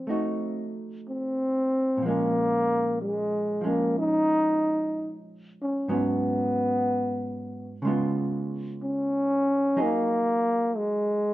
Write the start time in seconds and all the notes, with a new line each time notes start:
Already playing: F3 C4
0.07 A3 D#4 F#4
1.09 C4
1.97 A#2
2.02 F3 G#3 A#3
2.08 C#4
3.01 G#3
3.61 F3 G#3 C#4
3.67 A#3
3.99 D#4
5.62 C#4
5.88 G#2 F#3 B3 C#4
7.82 C#3 G#3
7.86 B3 F4
8.82 C#4
9.76 F#3 D#4 G#4
9.82 A#3
10.77 G#3